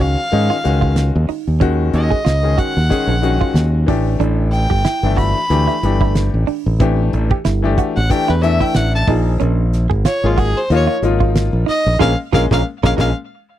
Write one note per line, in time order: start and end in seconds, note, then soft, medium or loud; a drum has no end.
0.00 0.15 C#2 medium
0.00 0.17 D#3 medium
0.00 0.17 G#3 medium
0.00 0.17 C#4 medium
0.00 0.18 F#4 medium
0.00 0.25 F#4 medium
0.00 0.98 F5 medium
0.00 open hi-hat medium
0.32 0.49 G#2 medium
0.32 0.54 D#3 medium
0.32 0.55 G#3 medium
0.32 0.55 C#4 medium
0.32 0.55 D#4 medium
0.32 closed hi-hat medium
0.50 0.76 F4 medium
0.50 snare soft
0.64 1.10 C#2 medium
0.64 1.28 D#3 medium
0.64 1.28 G#3 medium
0.64 1.28 C#4 medium
0.64 1.28 F#4 medium
0.64 closed hi-hat medium
0.81 1.07 F4 medium
0.81 kick medium
0.96 snare medium
0.96 closed hi-hat medium
1.16 1.28 D#2 medium
1.29 1.55 D#4 medium
1.29 muted fingered electric bass stroke soft
1.29 open hi-hat medium
1.48 1.90 D#2 medium
1.60 2.15 D#3 medium
1.60 2.15 G#3 medium
1.60 1.86 C#4 medium
1.60 2.16 C#4 medium
1.60 2.16 F#4 loud
1.60 kick loud
1.60 closed hi-hat medium
1.93 2.10 D#2 medium
1.93 2.60 D#5 medium
1.93 closed hi-hat medium
2.11 2.23 G#4 medium
2.11 kick medium
2.25 2.56 C#2 medium
2.25 2.51 F4 medium
2.25 snare loud
2.25 closed hi-hat medium
2.43 2.75 D#3 medium
2.43 2.76 G#3 medium
2.43 2.76 C#4 medium
2.43 2.76 G#4 medium
2.58 2.84 F#4 medium
2.58 3.56 F#5 medium
2.58 kick medium
2.58 closed hi-hat medium
2.77 2.90 D#2 medium
2.77 snare soft
2.90 3.13 D#3 medium
2.90 3.13 G#3 medium
2.90 3.13 C#4 medium
2.90 3.14 G#4 medium
2.90 kick medium
2.90 closed hi-hat medium
3.07 3.37 A#1 medium
3.07 3.35 F3 medium
3.22 3.86 D#3 medium
3.22 3.87 G#3 medium
3.22 3.87 C#4 medium
3.22 3.87 F#4 medium
3.22 closed hi-hat medium
3.41 3.67 F4 medium
3.41 muted fingered electric bass stroke soft
3.41 kick medium
3.54 3.84 D#2 medium
3.54 snare medium
3.54 closed hi-hat medium
3.86 4.18 A1 medium
3.86 4.79 E3 medium
3.86 4.80 A3 medium
3.86 4.14 D4 medium
3.86 4.80 D4 medium
3.86 4.80 G4 medium
3.86 kick loud
3.86 open hi-hat medium
4.20 4.66 A1 loud
4.20 4.46 D4 medium
4.20 closed hi-hat medium
4.52 5.14 G5 medium
4.52 closed hi-hat medium
4.70 4.84 G1 medium
4.70 4.82 G4 medium
4.70 kick medium
4.85 5.11 E4 medium
4.85 snare loud
4.85 closed hi-hat medium
5.03 5.33 G1 medium
5.03 5.35 E3 medium
5.03 5.36 A3 medium
5.03 5.36 D4 medium
5.03 5.37 E4 medium
5.17 5.43 F#4 medium
5.17 6.12 B5 medium
5.17 kick medium
5.17 open hi-hat medium
5.50 5.67 D2 medium
5.50 5.73 E3 medium
5.50 5.73 A3 medium
5.50 5.74 D4 medium
5.50 5.74 G4 medium
5.50 closed hi-hat medium
5.68 5.94 E4 medium
5.83 6.29 G1 medium
5.83 6.47 E3 medium
5.83 6.47 A3 medium
5.83 6.48 D4 medium
5.83 6.48 G4 medium
5.83 closed hi-hat medium
6.01 6.27 E4 medium
6.01 kick medium
6.15 snare loud
6.15 closed hi-hat medium
6.34 6.47 A1 medium
6.47 6.73 D4 medium
6.47 muted fingered electric bass stroke soft
6.47 open hi-hat medium
6.66 7.09 A1 medium
6.80 7.34 E3 medium
6.80 7.35 A3 medium
6.80 7.07 C4 medium
6.80 7.35 D4 medium
6.80 7.35 G4 medium
6.80 kick loud
6.80 closed hi-hat medium
7.13 7.29 A1 loud
7.13 closed hi-hat medium
7.31 7.43 G4 medium
7.31 kick medium
7.45 7.75 G1 medium
7.45 7.71 E4 medium
7.45 snare loud
7.45 closed hi-hat medium
7.63 7.95 E3 medium
7.63 7.95 A3 medium
7.63 7.96 D4 medium
7.63 7.96 G4 medium
7.78 8.04 F#4 medium
7.78 kick medium
7.78 closed hi-hat medium
7.96 8.10 A1 medium
7.96 8.12 F#5 medium
7.96 snare soft
8.10 8.33 E3 medium
8.10 8.33 A3 medium
8.10 8.33 D4 medium
8.10 8.34 G4 medium
8.10 8.32 G5 medium
8.10 kick medium
8.10 closed hi-hat medium
8.28 8.58 E2 medium
8.28 8.54 E4 medium
8.28 8.43 B4 medium
8.28 snare soft
8.42 9.06 E3 medium
8.42 9.06 A3 medium
8.42 9.07 D4 medium
8.42 9.07 E4 medium
8.42 8.63 E5 medium
8.42 closed hi-hat medium
8.60 8.86 E4 medium
8.60 8.77 G5 medium
8.60 muted fingered electric bass stroke soft
8.60 kick medium
8.75 9.05 A1 medium
8.75 8.94 F#5 medium
8.75 snare loud
8.75 closed hi-hat medium
8.95 9.03 A5 medium
9.08 9.37 A#1 medium
9.08 10.00 F3 medium
9.08 10.00 A#3 medium
9.08 9.34 D#4 medium
9.08 10.00 D#4 medium
9.08 10.01 G#4 medium
9.08 kick loud
9.08 open hi-hat medium
9.40 9.86 A#1 loud
9.40 9.66 C#4 medium
9.40 closed hi-hat medium
9.73 snare soft
9.73 closed hi-hat medium
9.90 10.04 G#1 medium
9.90 10.02 G#4 medium
9.90 kick medium
10.05 10.31 F4 medium
10.05 10.27 C#5 medium
10.05 snare loud
10.05 closed hi-hat medium
10.23 10.53 G#1 medium
10.23 10.55 F3 medium
10.23 10.55 A#3 medium
10.23 10.56 D#4 medium
10.23 10.41 F4 medium
10.23 10.56 G#4 medium
10.38 10.63 F#4 medium
10.38 10.59 G#4 medium
10.38 kick medium
10.38 open hi-hat medium
10.57 10.71 C5 medium
10.70 10.87 D#2 medium
10.70 10.93 F3 medium
10.70 10.94 A#3 medium
10.70 10.93 D#4 medium
10.70 10.94 F4 loud
10.70 closed hi-hat medium
10.74 10.93 C#5 medium
10.87 11.14 F4 medium
11.02 11.48 G#1 medium
11.02 11.66 F3 medium
11.02 11.67 A#3 medium
11.02 11.67 D#4 medium
11.02 11.67 F4 medium
11.02 closed hi-hat medium
11.20 11.46 F4 medium
11.20 kick medium
11.36 snare loud
11.36 closed hi-hat medium
11.53 11.66 A#1 medium
11.66 11.93 D#4 medium
11.66 11.99 D#5 loud
11.66 muted fingered electric bass stroke soft
11.66 open hi-hat medium
11.86 11.99 A#1 medium
11.99 12.14 A#1 loud
11.99 12.12 G#3 loud
11.99 12.12 A#3 medium
11.99 12.12 C#4 loud
11.99 12.11 F4 medium
11.99 12.12 G#4 medium
11.99 12.12 A#4 medium
11.99 12.12 F5 loud
11.99 kick loud
11.99 snare medium
12.32 12.46 A#1 loud
12.32 12.45 G#3 loud
12.32 12.46 A#3 medium
12.32 12.45 C#4 medium
12.32 12.44 F4 medium
12.32 12.44 G#4 medium
12.32 12.45 A#4 medium
12.32 12.45 F5 medium
12.32 kick medium
12.32 snare medium
12.51 12.62 A#1 medium
12.51 12.60 G#3 medium
12.51 12.60 A#3 medium
12.51 12.60 C#4 medium
12.51 12.61 F4 loud
12.51 12.61 G#4 medium
12.51 12.61 A#4 loud
12.51 12.61 F5 medium
12.51 kick loud
12.51 snare medium
12.83 12.94 A#1 medium
12.83 12.93 G#3 medium
12.83 12.93 A#3 medium
12.83 12.93 C#4 medium
12.83 12.93 F4 loud
12.83 12.93 G#4 medium
12.83 12.93 A#4 loud
12.83 12.94 F5 medium
12.83 kick loud
12.83 snare medium
12.97 13.11 A#1 medium
12.97 13.10 G#3 medium
12.97 13.09 A#3 medium
12.97 13.10 C#4 medium
12.97 13.09 F4 loud
12.97 13.09 G#4 medium
12.97 13.09 A#4 loud
12.97 13.11 F5 medium
12.97 kick loud
12.97 snare medium